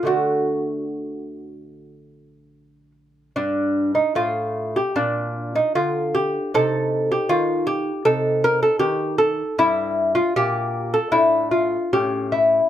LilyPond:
<<
  \new Staff \with { instrumentName = "Lute" } { \time 4/4 \key c \dorian \tempo 4 = 75 << { fis'2.~ fis'8 r8 | d'8. ees'16 f'8. g'16 d'8. ees'16 f'8 g'8 | a'8. g'16 f'8 g'8 a'8 bes'16 a'16 g'8 a'8 | \key g \dorian e'8. f'16 g'8. a'16 e'8 f'8 g'8 e'8 | } \\ { r1 | r1 | ees'2 ees'2 | r2 d'4 cis'4 | } >> }
  \new Staff \with { instrumentName = "Lute" } { \clef bass \time 4/4 \key c \dorian <d a d'>1 | g,4 a,4 bes,4 d4 | c4 ees4 c4 ees4 | \key g \dorian g,4 bes,4 a,4 a,4 | }
>>